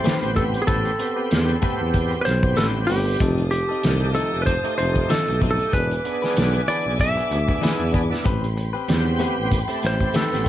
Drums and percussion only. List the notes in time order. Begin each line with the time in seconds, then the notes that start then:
0.06 snare, closed hi-hat
0.23 closed hi-hat
0.37 kick, closed hi-hat
0.54 closed hi-hat
0.68 kick, closed hi-hat
0.85 closed hi-hat
0.99 closed hi-hat
1.31 snare, closed hi-hat
1.49 closed hi-hat
1.62 kick, closed hi-hat
1.94 kick, closed hi-hat
2.11 closed hi-hat
2.26 snare, closed hi-hat
2.43 kick, closed hi-hat
2.57 snare, closed hi-hat
2.88 open hi-hat
3.20 kick, closed hi-hat
3.38 closed hi-hat
3.52 closed hi-hat
3.83 snare, closed hi-hat
4.16 closed hi-hat
4.47 kick, closed hi-hat
4.65 closed hi-hat
4.79 closed hi-hat
4.96 kick, closed hi-hat
5.10 snare, closed hi-hat
5.28 closed hi-hat
5.42 kick, closed hi-hat
5.59 closed hi-hat
5.73 kick, closed hi-hat
5.91 closed hi-hat
6.05 closed hi-hat
6.24 snare
6.37 snare, closed hi-hat
6.54 closed hi-hat
6.68 closed hi-hat
7.00 kick, closed hi-hat
7.17 closed hi-hat
7.31 closed hi-hat
7.49 kick, closed hi-hat
7.63 snare, closed hi-hat
7.94 kick, closed hi-hat
8.13 snare
8.26 kick, closed hi-hat
8.44 closed hi-hat
8.57 closed hi-hat
8.88 snare, closed hi-hat
9.20 closed hi-hat
9.52 kick, closed hi-hat
9.69 closed hi-hat
9.83 snare, closed hi-hat
10.01 kick, closed hi-hat
10.14 snare, closed hi-hat
10.32 snare, closed hi-hat